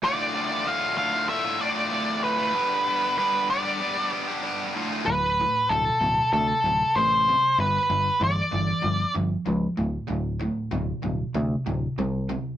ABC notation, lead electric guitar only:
X:1
M:4/4
L:1/8
Q:1/4=95
K:Ddor
V:1 name="Lead electric guitar"
d2 f f e d2 B- | B2 B d2 z3 | B2 A2 A2 c2 | B2 d3 z3 |
z8 |]